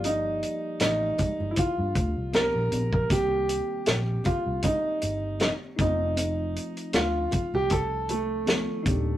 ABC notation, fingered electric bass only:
X:1
M:4/4
L:1/16
Q:"Swing 16ths" 1/4=78
K:Fmix
V:1 name="Fingered electric bass" clef=bass
G,,,3 z A,,,2 z G,,, z G,, D,, C,,2 B,,, B,,,2 | C,,3 z B,,,2 z C,, z2 G,,,3 z F,,,2- | F,,,3 z D,,2 z C,,6 z E,,2 |]